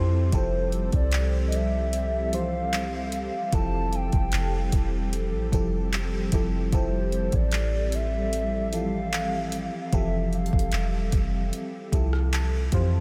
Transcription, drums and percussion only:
0.32 kick loud
0.32 closed hi-hat medium
0.72 closed hi-hat soft
0.92 kick loud
0.92 closed hi-hat soft
1.12 clap loud
1.12 closed hi-hat medium
1.52 closed hi-hat medium
1.93 closed hi-hat medium
2.33 closed hi-hat medium
2.73 clap loud
2.73 closed hi-hat medium
3.12 closed hi-hat medium
3.52 kick loud
3.52 closed hi-hat medium
3.93 closed hi-hat soft
4.12 kick loud
4.12 closed hi-hat soft
4.32 clap loud
4.32 closed hi-hat medium
4.72 kick loud
4.72 closed hi-hat medium
5.13 closed hi-hat medium
5.52 kick loud
5.52 closed hi-hat medium
5.93 clap loud
5.93 closed hi-hat medium
6.32 kick loud
6.32 closed hi-hat medium
6.72 kick loud
6.72 closed hi-hat medium
7.12 closed hi-hat soft
7.32 kick loud
7.32 closed hi-hat medium
7.52 clap loud
7.52 closed hi-hat medium
7.92 closed hi-hat medium
8.33 closed hi-hat medium
8.73 closed hi-hat medium
9.13 clap loud
9.13 closed hi-hat medium
9.52 closed hi-hat medium
9.93 kick loud
9.93 closed hi-hat medium
10.33 closed hi-hat soft
10.46 closed hi-hat soft
10.53 kick loud
10.59 closed hi-hat medium
10.72 clap loud
10.72 closed hi-hat medium
11.12 kick loud
11.12 closed hi-hat medium
11.53 closed hi-hat medium
11.92 kick medium
11.92 closed hi-hat medium
12.13 cross-stick medium
12.33 clap loud
12.33 closed hi-hat medium
12.72 kick loud
12.72 closed hi-hat medium

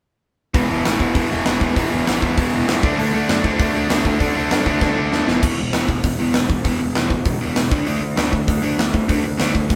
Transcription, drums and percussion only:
0.54 kick loud
0.54 open hi-hat soft
0.85 snare loud
0.85 open hi-hat medium
1.00 kick medium
1.15 kick medium
1.15 open hi-hat medium
1.46 snare loud
1.46 open hi-hat medium
1.61 kick medium
1.76 kick medium
1.76 open hi-hat medium
2.07 snare loud
2.07 open hi-hat medium
2.22 kick medium
2.38 kick loud
2.38 open hi-hat medium
2.69 snare loud
2.69 open hi-hat medium
2.83 kick loud
2.99 open hi-hat soft
3.29 snare loud
3.29 open hi-hat medium
3.44 kick medium
3.60 kick loud
3.60 open hi-hat medium
3.90 snare loud
3.90 open hi-hat medium
4.05 kick medium
4.20 kick medium
4.20 open hi-hat medium
4.51 snare loud
4.51 open hi-hat medium
4.66 kick medium
4.81 kick medium
4.81 snare medium
5.12 snare medium
5.28 snare medium
5.43 kick loud
5.43 crash loud
5.73 snare loud
5.73 open hi-hat medium
5.89 kick medium
6.04 kick medium
6.04 open hi-hat medium
6.34 snare loud
6.34 open hi-hat medium
6.50 kick medium
6.65 kick medium
6.65 open hi-hat medium
6.95 snare loud
6.95 open hi-hat medium
7.10 kick medium
7.25 kick medium
7.25 open hi-hat medium
7.56 snare loud
7.56 open hi-hat medium
7.71 kick loud
7.86 open hi-hat soft
8.17 snare loud
8.17 open hi-hat medium
8.33 kick medium
8.48 kick medium
8.48 open hi-hat medium
8.79 snare loud
8.79 open hi-hat medium
8.94 kick medium
9.09 kick medium
9.09 open hi-hat medium
9.39 snare loud
9.39 open hi-hat medium
9.55 kick medium
9.70 kick medium
9.70 open hi-hat medium

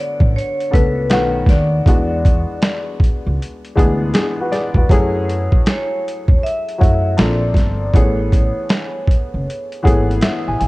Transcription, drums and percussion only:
0.20 kick medium
0.38 closed hi-hat medium
0.60 closed hi-hat soft
0.73 kick medium
0.73 closed hi-hat medium
1.10 snare loud
1.10 closed hi-hat medium
1.46 kick medium
1.46 snare soft
1.46 closed hi-hat medium
1.86 kick loud
1.86 closed hi-hat medium
2.25 kick medium
2.25 closed hi-hat medium
2.62 snare loud
2.62 closed hi-hat medium
3.00 kick medium
3.00 closed hi-hat medium
3.42 closed hi-hat medium
3.65 closed hi-hat soft
3.77 kick medium
3.77 closed hi-hat medium
4.14 snare medium
4.14 closed hi-hat medium
4.53 snare soft
4.53 closed hi-hat medium
4.75 kick medium
4.90 kick medium
4.90 closed hi-hat medium
5.30 closed hi-hat medium
5.52 kick medium
5.66 snare loud
5.66 closed hi-hat medium
6.08 closed hi-hat medium
6.28 kick medium
6.46 closed hi-hat medium
6.69 closed hi-hat soft
6.81 kick medium
6.81 closed hi-hat medium
7.18 snare loud
7.18 closed hi-hat medium
7.54 kick medium
7.54 snare soft
7.54 closed hi-hat medium
7.94 kick loud
7.94 closed hi-hat medium
8.32 kick medium
8.32 closed hi-hat medium
8.70 snare loud
8.70 closed hi-hat medium
9.08 kick medium
9.08 closed hi-hat medium
9.50 closed hi-hat medium
9.72 closed hi-hat soft
9.85 kick medium
9.85 closed hi-hat medium
10.11 closed hi-hat soft
10.22 snare medium
10.22 closed hi-hat medium
10.61 closed hi-hat medium

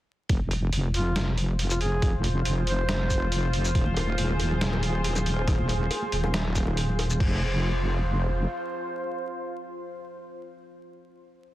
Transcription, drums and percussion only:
0.29 kick loud
0.29 closed hi-hat medium
0.51 closed hi-hat medium
0.73 closed hi-hat medium
0.94 closed hi-hat medium
1.16 snare loud
1.16 closed hi-hat medium
1.38 closed hi-hat medium
1.59 closed hi-hat medium
1.70 shaker medium
1.81 closed hi-hat medium
2.02 kick loud
2.02 closed hi-hat medium
2.24 closed hi-hat medium
2.45 closed hi-hat medium
2.67 closed hi-hat medium
2.89 snare loud
2.89 closed hi-hat medium
3.10 kick medium
3.10 closed hi-hat medium
3.10 shaker medium
3.32 closed hi-hat medium
3.53 closed hi-hat medium
3.65 shaker medium
3.75 kick loud
3.75 closed hi-hat medium
3.86 high conga loud
3.97 closed hi-hat medium
3.97 high bongo medium
4.08 high conga medium
4.18 closed hi-hat medium
4.30 high conga medium
4.39 closed hi-hat medium
4.39 high bongo soft
4.52 low conga medium
4.61 snare loud
4.61 closed hi-hat medium
4.73 high bongo medium
4.73 low conga medium
4.83 closed hi-hat medium
5.04 closed hi-hat medium
5.15 high bongo medium
5.15 low conga medium
5.15 shaker medium
5.26 closed hi-hat medium
5.47 kick loud
5.47 closed hi-hat medium
5.47 high bongo medium
5.59 high conga medium
5.69 closed hi-hat medium
5.91 closed hi-hat medium
5.91 high bongo medium
6.02 high conga medium
6.12 closed hi-hat medium
6.24 high bongo medium
6.24 low conga medium
6.34 snare loud
6.34 closed hi-hat medium
6.45 low conga medium
6.55 kick medium
6.55 closed hi-hat medium
6.55 shaker medium
6.67 high bongo medium
6.77 closed hi-hat medium
6.89 low conga medium
6.99 closed hi-hat medium
6.99 high bongo medium
7.10 shaker medium
7.20 kick loud
7.20 crash medium

